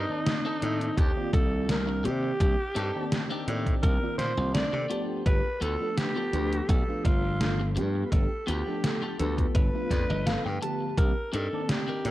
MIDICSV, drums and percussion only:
0, 0, Header, 1, 2, 480
1, 0, Start_track
1, 0, Tempo, 714286
1, 1618, Time_signature, 4, 2, 24, 8
1, 8137, End_track
2, 0, Start_track
2, 0, Title_t, "Drums"
2, 178, Note_on_c, 9, 38, 123
2, 178, Note_on_c, 9, 42, 74
2, 245, Note_off_c, 9, 38, 0
2, 245, Note_off_c, 9, 42, 0
2, 418, Note_on_c, 9, 42, 67
2, 485, Note_off_c, 9, 42, 0
2, 546, Note_on_c, 9, 42, 35
2, 613, Note_off_c, 9, 42, 0
2, 655, Note_on_c, 9, 36, 117
2, 658, Note_on_c, 9, 42, 76
2, 722, Note_off_c, 9, 36, 0
2, 725, Note_off_c, 9, 42, 0
2, 895, Note_on_c, 9, 36, 107
2, 900, Note_on_c, 9, 42, 64
2, 962, Note_off_c, 9, 36, 0
2, 967, Note_off_c, 9, 42, 0
2, 1136, Note_on_c, 9, 38, 121
2, 1136, Note_on_c, 9, 42, 79
2, 1204, Note_off_c, 9, 38, 0
2, 1204, Note_off_c, 9, 42, 0
2, 1379, Note_on_c, 9, 42, 60
2, 1446, Note_off_c, 9, 42, 0
2, 1615, Note_on_c, 9, 36, 118
2, 1617, Note_on_c, 9, 42, 70
2, 1682, Note_off_c, 9, 36, 0
2, 1684, Note_off_c, 9, 42, 0
2, 1855, Note_on_c, 9, 42, 66
2, 1923, Note_off_c, 9, 42, 0
2, 2097, Note_on_c, 9, 38, 110
2, 2097, Note_on_c, 9, 42, 78
2, 2164, Note_off_c, 9, 38, 0
2, 2164, Note_off_c, 9, 42, 0
2, 2337, Note_on_c, 9, 42, 63
2, 2405, Note_off_c, 9, 42, 0
2, 2462, Note_on_c, 9, 36, 63
2, 2464, Note_on_c, 9, 42, 36
2, 2529, Note_off_c, 9, 36, 0
2, 2531, Note_off_c, 9, 42, 0
2, 2574, Note_on_c, 9, 36, 109
2, 2576, Note_on_c, 9, 42, 79
2, 2642, Note_off_c, 9, 36, 0
2, 2643, Note_off_c, 9, 42, 0
2, 2816, Note_on_c, 9, 38, 60
2, 2816, Note_on_c, 9, 42, 62
2, 2883, Note_off_c, 9, 38, 0
2, 2883, Note_off_c, 9, 42, 0
2, 3056, Note_on_c, 9, 38, 116
2, 3056, Note_on_c, 9, 42, 78
2, 3123, Note_off_c, 9, 38, 0
2, 3123, Note_off_c, 9, 42, 0
2, 3297, Note_on_c, 9, 42, 60
2, 3364, Note_off_c, 9, 42, 0
2, 3534, Note_on_c, 9, 36, 118
2, 3536, Note_on_c, 9, 42, 79
2, 3602, Note_off_c, 9, 36, 0
2, 3603, Note_off_c, 9, 42, 0
2, 3777, Note_on_c, 9, 42, 66
2, 3844, Note_off_c, 9, 42, 0
2, 4016, Note_on_c, 9, 38, 109
2, 4016, Note_on_c, 9, 42, 75
2, 4083, Note_off_c, 9, 38, 0
2, 4083, Note_off_c, 9, 42, 0
2, 4257, Note_on_c, 9, 42, 70
2, 4325, Note_off_c, 9, 42, 0
2, 4387, Note_on_c, 9, 42, 39
2, 4454, Note_off_c, 9, 42, 0
2, 4496, Note_on_c, 9, 36, 116
2, 4498, Note_on_c, 9, 42, 81
2, 4563, Note_off_c, 9, 36, 0
2, 4565, Note_off_c, 9, 42, 0
2, 4736, Note_on_c, 9, 36, 101
2, 4739, Note_on_c, 9, 42, 62
2, 4804, Note_off_c, 9, 36, 0
2, 4806, Note_off_c, 9, 42, 0
2, 4978, Note_on_c, 9, 38, 115
2, 4978, Note_on_c, 9, 42, 74
2, 5045, Note_off_c, 9, 38, 0
2, 5045, Note_off_c, 9, 42, 0
2, 5219, Note_on_c, 9, 42, 63
2, 5287, Note_off_c, 9, 42, 0
2, 5456, Note_on_c, 9, 36, 113
2, 5460, Note_on_c, 9, 42, 80
2, 5524, Note_off_c, 9, 36, 0
2, 5527, Note_off_c, 9, 42, 0
2, 5701, Note_on_c, 9, 42, 71
2, 5768, Note_off_c, 9, 42, 0
2, 5940, Note_on_c, 9, 38, 122
2, 5940, Note_on_c, 9, 42, 86
2, 6007, Note_off_c, 9, 38, 0
2, 6007, Note_off_c, 9, 42, 0
2, 6179, Note_on_c, 9, 42, 72
2, 6247, Note_off_c, 9, 42, 0
2, 6304, Note_on_c, 9, 36, 62
2, 6307, Note_on_c, 9, 42, 38
2, 6371, Note_off_c, 9, 36, 0
2, 6374, Note_off_c, 9, 42, 0
2, 6416, Note_on_c, 9, 36, 113
2, 6417, Note_on_c, 9, 42, 84
2, 6483, Note_off_c, 9, 36, 0
2, 6484, Note_off_c, 9, 42, 0
2, 6656, Note_on_c, 9, 36, 59
2, 6660, Note_on_c, 9, 38, 62
2, 6660, Note_on_c, 9, 42, 67
2, 6723, Note_off_c, 9, 36, 0
2, 6727, Note_off_c, 9, 38, 0
2, 6727, Note_off_c, 9, 42, 0
2, 6900, Note_on_c, 9, 38, 114
2, 6900, Note_on_c, 9, 42, 79
2, 6967, Note_off_c, 9, 38, 0
2, 6967, Note_off_c, 9, 42, 0
2, 7140, Note_on_c, 9, 42, 67
2, 7207, Note_off_c, 9, 42, 0
2, 7375, Note_on_c, 9, 36, 121
2, 7379, Note_on_c, 9, 42, 81
2, 7443, Note_off_c, 9, 36, 0
2, 7446, Note_off_c, 9, 42, 0
2, 7618, Note_on_c, 9, 42, 68
2, 7685, Note_off_c, 9, 42, 0
2, 7856, Note_on_c, 9, 38, 122
2, 7856, Note_on_c, 9, 42, 83
2, 7924, Note_off_c, 9, 38, 0
2, 7924, Note_off_c, 9, 42, 0
2, 8097, Note_on_c, 9, 42, 75
2, 8137, Note_off_c, 9, 42, 0
2, 8137, End_track
0, 0, End_of_file